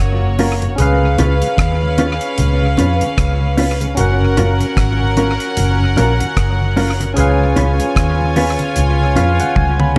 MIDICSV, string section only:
0, 0, Header, 1, 2, 480
1, 0, Start_track
1, 0, Key_signature, 6, "major"
1, 0, Tempo, 798085
1, 472, Time_signature, 4, 2, 24, 8
1, 6007, End_track
2, 0, Start_track
2, 0, Title_t, "String section"
2, 0, Program_c, 0, 48
2, 0, Note_on_c, 0, 58, 79
2, 0, Note_on_c, 0, 66, 84
2, 0, Note_on_c, 0, 73, 91
2, 447, Note_off_c, 0, 66, 0
2, 447, Note_off_c, 0, 73, 0
2, 448, Note_off_c, 0, 58, 0
2, 474, Note_on_c, 0, 61, 84
2, 474, Note_on_c, 0, 77, 95
2, 475, Note_on_c, 0, 71, 86
2, 2368, Note_off_c, 0, 61, 0
2, 2369, Note_off_c, 0, 71, 0
2, 2369, Note_off_c, 0, 77, 0
2, 2391, Note_on_c, 0, 78, 93
2, 2392, Note_on_c, 0, 61, 82
2, 2393, Note_on_c, 0, 70, 83
2, 4287, Note_off_c, 0, 61, 0
2, 4287, Note_off_c, 0, 78, 0
2, 4288, Note_off_c, 0, 70, 0
2, 4305, Note_on_c, 0, 80, 88
2, 4306, Note_on_c, 0, 65, 91
2, 4308, Note_on_c, 0, 73, 81
2, 6007, Note_off_c, 0, 65, 0
2, 6007, Note_off_c, 0, 73, 0
2, 6007, Note_off_c, 0, 80, 0
2, 6007, End_track
0, 0, End_of_file